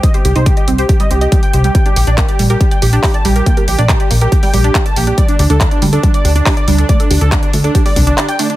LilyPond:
<<
  \new Staff \with { instrumentName = "Supersaw synth" } { \time 4/4 \key g \minor \tempo 4 = 140 ees''16 g'16 g'16 c''16 g'16 g'16 r16 g'16 g'16 ees''16 g'16 g'16 g'16 g''16 g'16 g'16 | g''16 g'16 g'16 d''16 g'16 g'16 r16 g'16 g'16 g''16 g'16 g'16 g'16 a''16 g'16 g'16 | g''16 g'16 g'16 d''16 g'16 g'16 r16 g'16 g'16 g''16 g'16 g'16 g'16 a''16 g'16 g'16 | d''16 d'16 d'16 a'16 d'16 d'16 r16 d'16 d'16 d''16 d'16 d'16 d'16 d''16 d'16 d'16 |
d''16 d'16 d'16 a'16 d'16 d'16 r16 d'16 d'16 d''16 d'16 d'16 d'16 g''16 d'16 d'16 | }
  \new Staff \with { instrumentName = "Synth arpeggio sound" } { \time 4/4 \key g \minor c'16 c''16 g'16 ees'16 g'16 ees''16 c'16 c''16 g'16 g16 c'16 ees''16 g16 g''16 c''16 g16 | g16 d'16 g'16 d'16 bes'16 d''16 g16 bes'16 g16 d''16 g'16 d'16 g'16 d''16 g16 bes'16 | bes16 bes'16 g'16 d'16 g'16 d''16 bes16 bes'16 g'16 g16 g16 d'16 g'16 d''16 bes16 d'16 | g16 d'16 g'16 d'16 a'16 d''16 g16 a'16 g16 d''16 g'16 d'16 g'16 d''16 g16 a'16 |
a16 a'16 g'16 d'16 g'16 d''16 a16 a'16 g'16 g16 g16 d'16 g'16 d''16 a16 d'16 | }
  \new Staff \with { instrumentName = "Analog synth bass" } { \clef bass \time 4/4 \key g \minor r8 c,16 c,8 r16 c,8 r8 c,8 r8 c,8 | r8 bes,,16 bes,,8 r16 bes,,8 r8 bes,,8 r8 bes,,8 | r8 bes,,16 bes,,8 r16 bes,,8 r8 bes,,8 r8 bes,,8 | r8 d,16 d,8 r16 d,8 r8 d,8 r8 d,8 |
r8 d,16 d,8 r16 d,8 r8 c,8 r4 | }
  \new DrumStaff \with { instrumentName = "Drums" } \drummode { \time 4/4 <hh bd>16 hh16 hh16 hh16 <hh bd>16 hh16 hh16 hh16 <hh bd>16 hh16 hh16 hh16 <hh bd>16 hh16 hh16 hh16 | <hh bd>16 hh16 hho16 hh16 <hc hh bd>16 hh16 hho16 hh16 <hh bd>16 hh16 hho16 hh16 <hc hho bd>16 hh16 hho16 hh16 | <hh bd>16 hh16 hho16 hh16 <hc hh bd>16 hh16 hho16 hh16 <hh bd>16 hho16 hho16 hh16 <hc hh bd>16 hh16 hho16 hh16 | <hh bd>16 hh16 hho16 hh16 <hc hh bd>16 hh16 hho16 hh16 <hh bd>16 hh16 hho16 hh16 <hc hho bd>16 hh16 hho16 hh16 |
<hh bd>16 hh16 hho16 hh16 <hc hh bd>16 hh16 hho16 hh16 <hh bd>16 hho16 <hho bd>16 hh16 <hc hh>16 hh16 hho16 hh16 | }
>>